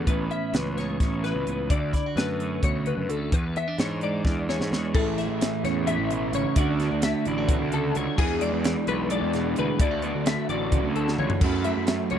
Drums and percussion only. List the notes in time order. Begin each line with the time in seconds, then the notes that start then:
0.07 kick, closed hi-hat
0.31 closed hi-hat
0.54 snare, closed hi-hat
0.78 snare, closed hi-hat
1.00 kick, snare, closed hi-hat
1.24 snare, closed hi-hat
1.47 closed hi-hat
1.70 kick, closed hi-hat
1.93 kick, snare, closed hi-hat
2.17 snare, closed hi-hat
2.40 closed hi-hat
2.63 kick, closed hi-hat
2.86 closed hi-hat
3.10 closed hi-hat
3.32 kick, closed hi-hat
3.56 closed hi-hat
3.78 snare, closed hi-hat
4.01 closed hi-hat
4.25 kick, snare
4.49 snare
4.61 snare
4.73 snare
4.95 kick, crash
5.18 snare, closed hi-hat
5.41 snare, closed hi-hat
5.65 snare, closed hi-hat
5.87 closed hi-hat
6.11 closed hi-hat
6.33 closed hi-hat
6.56 kick, closed hi-hat
6.80 snare, closed hi-hat
7.02 snare, closed hi-hat
7.25 closed hi-hat
7.49 kick, closed hi-hat
7.72 closed hi-hat
7.95 closed hi-hat
8.18 kick, crash
8.41 closed hi-hat
8.64 snare, closed hi-hat
8.87 closed hi-hat
9.10 closed hi-hat
9.33 snare, closed hi-hat
9.56 closed hi-hat
9.79 kick, closed hi-hat
10.02 closed hi-hat
10.26 snare, closed hi-hat
10.49 closed hi-hat
10.72 kick, closed hi-hat
10.96 closed hi-hat
11.08 snare
11.18 mid tom
11.30 floor tom
11.41 kick, crash
11.64 closed hi-hat
11.87 snare, closed hi-hat
12.10 closed hi-hat